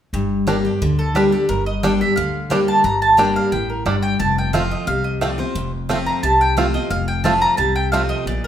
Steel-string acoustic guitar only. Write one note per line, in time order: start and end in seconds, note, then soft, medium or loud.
0.14 0.78 G2 medium
0.47 0.64 G3 medium
0.47 0.64 A#3 medium
0.47 0.65 D4 medium
0.47 0.63 G4 medium
0.65 0.81 D4 soft
0.65 0.81 G4 medium
0.82 1.46 D3 medium
1.15 1.32 G3 medium
1.15 1.32 A#3 medium
1.15 1.33 D4 medium
1.15 1.31 G4 medium
1.32 1.49 D4 medium
1.32 1.48 G4 medium
1.49 2.13 G2 medium
1.83 2.00 G3 medium
1.83 2.00 A#3 medium
1.83 2.01 D4 medium
1.83 2.00 G4 medium
2.01 2.17 D4 soft
2.01 2.16 G4 medium
2.17 2.82 D3 loud
2.50 2.83 G3 medium
2.50 2.83 A#3 medium
2.50 2.83 D4 medium
2.50 2.84 G4 medium
2.84 3.49 G2 medium
3.17 3.50 G3 medium
3.17 3.51 A#3 medium
3.17 3.51 D4 medium
3.17 3.51 G4 medium
3.52 3.85 A2 medium
3.86 4.18 G2 medium
4.20 4.84 F2 medium
4.53 4.86 F3 medium
4.53 4.86 A3 medium
4.53 4.86 C4 medium
4.53 4.87 F4 medium
4.87 5.52 C3 medium
5.21 5.38 F3 medium
5.21 5.39 A3 medium
5.21 5.39 C4 medium
5.21 5.37 F4 medium
5.38 5.55 C4 soft
5.38 5.54 F4 medium
5.55 6.20 F2 loud
5.89 6.22 F3 medium
5.89 6.22 A3 medium
5.89 6.22 C4 medium
5.89 6.23 F4 medium
6.23 6.88 C3 loud
6.57 6.74 F3 medium
6.57 6.74 A3 medium
6.57 6.74 C4 medium
6.57 6.73 F4 medium
6.74 6.91 C4 medium
6.74 6.90 F4 medium
6.91 7.55 F2 medium
7.24 7.57 F3 medium
7.24 7.57 A3 medium
7.24 7.57 C4 medium
7.24 7.58 F4 medium
7.58 8.23 C3 medium
7.92 8.25 F3 medium
7.92 8.25 A3 medium
7.92 8.26 C4 medium
7.92 8.26 F4 medium
8.27 8.47 A#2 medium